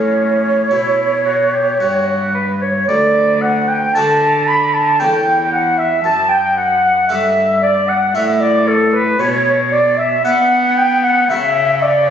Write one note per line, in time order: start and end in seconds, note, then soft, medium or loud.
0.00 0.67 A2 soft
0.00 0.72 A2 medium
0.00 2.83 A3 soft
0.00 0.58 C#4 medium
0.00 2.84 C#4 soft
0.00 2.85 E4 soft
0.00 2.03 C#5 medium
0.71 1.80 B2 medium
0.71 1.76 B2 soft
0.71 1.22 E4 medium
1.26 1.54 F#4 medium
1.53 1.79 G4 medium
1.80 2.87 G2 medium
1.80 2.85 G2 soft
1.80 2.34 F#4 medium
2.34 2.47 B4 medium
2.34 2.64 B4 medium
2.61 2.87 C#5 medium
2.61 2.88 C#5 medium
2.88 3.91 D2 medium
2.88 3.43 D5 medium
2.88 3.41 D5 loud
3.41 3.69 F#5 medium
3.41 3.70 F#5 medium
3.68 3.94 G5 medium
3.94 5.02 D3 medium
3.94 4.96 D3 medium
3.94 4.71 A3 medium
3.94 4.71 D4 soft
3.94 4.71 F#4 medium
3.94 4.49 A5 medium
3.94 4.49 A5 loud
4.47 4.73 B5 medium
4.47 4.75 B5 loud
4.73 4.98 A5 medium
4.73 5.02 A5 loud
4.99 6.00 E2 medium
4.99 6.04 E2 medium
4.99 6.00 A3 medium
4.99 6.01 C#4 soft
4.99 6.01 A4 soft
4.99 5.51 G5 medium
5.52 5.79 F#5 loud
5.52 5.81 F#5 medium
5.78 6.03 E5 medium
5.78 6.04 E5 medium
6.04 7.05 F#2 medium
6.04 7.11 F#2 medium
6.04 6.31 A5 loud
6.04 6.30 A5 medium
6.29 6.55 G5 loud
6.29 6.56 G5 medium
6.55 7.07 F#5 medium
6.55 7.08 F#5 medium
7.09 8.11 G2 medium
7.09 8.14 G2 medium
7.09 7.85 A3 medium
7.09 7.85 D4 medium
7.09 7.86 A4 medium
7.09 7.61 E5 loud
7.09 7.61 E5 medium
7.62 7.87 D5 loud
7.62 7.90 D5 medium
7.88 8.16 F#5 loud
7.88 8.15 F#5 medium
8.15 9.18 A2 medium
8.15 9.16 A2 medium
8.15 8.91 A3 medium
8.15 8.91 D4 medium
8.15 8.91 A4 medium
8.15 8.42 E5 medium
8.15 8.27 E5 medium
8.40 8.69 D5 medium
8.40 8.70 D5 medium
8.68 8.95 A4 medium
8.68 8.94 A4 medium
8.93 9.21 B4 medium
8.93 9.22 B4 medium
9.19 10.20 B2 medium
9.19 10.23 B2 medium
9.19 9.49 C#5 loud
9.19 9.74 C#5 medium
9.71 9.99 D5 loud
9.71 9.98 D5 medium
9.97 10.24 E5 loud
9.97 10.24 E5 medium
10.25 11.26 B3 medium
10.25 11.28 B3 medium
10.25 11.01 D4 medium
10.25 11.01 B4 medium
10.25 10.78 F#5 loud
10.25 10.76 F#5 medium
10.77 11.02 G5 loud
10.77 11.06 G5 loud
11.02 11.31 F#5 loud
11.02 11.29 F#5 medium
11.29 12.10 C#3 medium
11.29 12.10 F#4 medium
11.29 12.10 A#4 medium
11.29 11.84 E5 loud
11.82 12.09 D5 loud
11.82 12.08 D5 medium